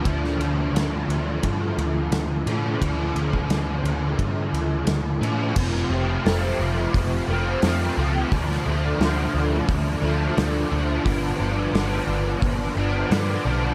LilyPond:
<<
  \new Staff \with { instrumentName = "Overdriven electric guitar" } { \time 4/4 \key d \dorian \tempo 4 = 88 <d f a d'>2.~ <d f a d'>8 <d f a d'>8 | <d f a d'>2.~ <d f a d'>8 <d f a d'>8 | <f, c f a c'>8 <f a c'>8 <c f a c'>4. <f a c'>8 <c f a c'>8 <f a c'>8 | <d f a d'>8 <f a d'>8 <d f a d'>4. <f a d'>8 <d f a d'>8 <f a d'>8 |
<g, d f b d'>8 <f b d'>8 <d f b d'>4. <f b d'>8 <d f b d'>8 <f b d'>8 | }
  \new Staff \with { instrumentName = "Picked electric bass" } { \clef bass \time 4/4 \key d \dorian d,8 d,8 d,8 d,8 g,8 d,8 d,8 a,8 | d,8 d,8 d,8 d,8 g,8 d,8 d,8 a,8 | f,,8 f,,8 f,,8 f,,8 f,,8 f,,8 f,8 cis,8 | d,8 d,8 d,8 d,8 d,8 d,8 d,8 d,8 |
g,,8 g,,8 g,,8 g,,8 g,,8 g,,8 g,8 b,,8 | }
  \new DrumStaff \with { instrumentName = "Drums" } \drummode { \time 4/4 <bd cymr>16 sn16 cymr8 <cymr sn>8 cymr8 <bd cymr>8 cymr8 <cymr sn>8 cymr8 | <bd cymr>8 cymr16 bd16 <cymr sn>8 cymr8 <bd cymr>8 cymr8 <cymr sn>8 cymr8 | <cymc bd>16 sn8. <hho sn>4 <hho bd>4 <hho sn>4 | <hho bd>16 sn8. <hho sn>4 <hho bd>4 <hho sn>4 |
<hho bd>4 <hho sn>4 <hho bd>4 <hho sn>4 | }
>>